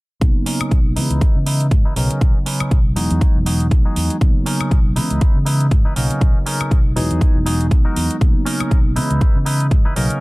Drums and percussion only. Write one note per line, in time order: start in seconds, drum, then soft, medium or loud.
0.21 kick loud
0.21 closed hi-hat medium
0.46 open hi-hat loud
0.61 closed hi-hat soft
0.61 high woodblock medium
0.71 kick loud
0.71 closed hi-hat medium
0.96 open hi-hat medium
1.11 closed hi-hat medium
1.21 kick loud
1.21 closed hi-hat medium
1.46 open hi-hat loud
1.61 closed hi-hat medium
1.71 kick loud
1.71 closed hi-hat medium
1.96 open hi-hat medium
2.11 closed hi-hat medium
2.21 kick loud
2.21 closed hi-hat medium
2.46 open hi-hat loud
2.60 closed hi-hat soft
2.60 high woodblock medium
2.71 kick loud
2.71 closed hi-hat medium
2.96 open hi-hat medium
3.11 closed hi-hat soft
3.21 kick loud
3.21 closed hi-hat medium
3.46 open hi-hat loud
3.60 closed hi-hat soft
3.71 kick loud
3.71 closed hi-hat medium
3.96 open hi-hat medium
4.10 closed hi-hat medium
4.21 kick loud
4.21 closed hi-hat medium
4.46 open hi-hat loud
4.61 closed hi-hat soft
4.61 high woodblock medium
4.71 kick loud
4.71 closed hi-hat medium
4.96 open hi-hat medium
5.11 closed hi-hat soft
5.21 kick loud
5.21 closed hi-hat medium
5.46 open hi-hat loud
5.60 closed hi-hat soft
5.71 kick loud
5.71 closed hi-hat medium
5.96 open hi-hat medium
6.11 closed hi-hat medium
6.21 kick loud
6.21 closed hi-hat medium
6.46 open hi-hat loud
6.61 high woodblock medium
6.71 kick loud
6.71 closed hi-hat medium
6.97 open hi-hat medium
7.11 closed hi-hat soft
7.21 kick loud
7.21 closed hi-hat medium
7.46 open hi-hat loud
7.61 closed hi-hat soft
7.71 kick loud
7.71 closed hi-hat medium
7.96 open hi-hat medium
8.11 closed hi-hat medium
8.21 kick loud
8.21 closed hi-hat medium
8.46 open hi-hat loud
8.60 high woodblock medium
8.71 kick loud
8.71 closed hi-hat medium
8.96 open hi-hat medium
9.11 closed hi-hat soft
9.21 kick loud
9.21 closed hi-hat medium
9.46 open hi-hat loud
9.60 closed hi-hat soft
9.71 kick loud
9.71 closed hi-hat medium
9.96 open hi-hat medium
10.10 closed hi-hat medium